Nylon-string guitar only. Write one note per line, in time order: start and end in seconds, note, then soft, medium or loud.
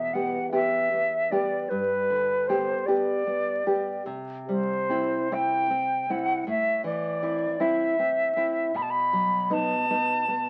0.00 1.66 E2 soft
0.00 0.37 B2 soft
0.15 0.49 B3 soft
0.15 0.50 G4 soft
0.52 0.88 B3 soft
0.52 0.88 G4 soft
0.93 1.30 B3 soft
1.32 1.67 B3 soft
1.32 1.67 G4 soft
1.71 4.01 G2 soft
2.10 2.72 D3 soft
2.49 2.84 B3 soft
2.49 2.84 G4 soft
2.88 3.23 B3 soft
2.88 3.23 G4 soft
3.27 3.65 B3 soft
3.66 4.02 B3 soft
3.66 4.02 G4 soft
4.06 6.43 C3 soft
4.49 5.16 G3 soft
4.89 5.27 C4 soft
4.89 5.28 E4 soft
5.31 5.67 C4 soft
5.31 5.67 E4 soft
5.70 6.09 C4 soft
6.10 6.43 C4 soft
6.10 6.44 E4 soft
6.47 8.71 A2 soft
6.84 7.46 E3 soft
7.22 7.57 C4 soft
7.22 7.57 E4 soft
7.60 7.94 C4 soft
7.60 7.95 E4 soft
7.99 8.35 C4 soft
8.36 8.71 C4 soft
8.36 8.71 E4 soft
8.74 10.49 B2 soft
9.13 9.73 F#3 soft
9.50 9.84 B3 soft
9.50 9.85 D#4 soft
9.90 10.24 B3 soft
9.90 10.24 D#4 soft
10.28 10.49 B3 soft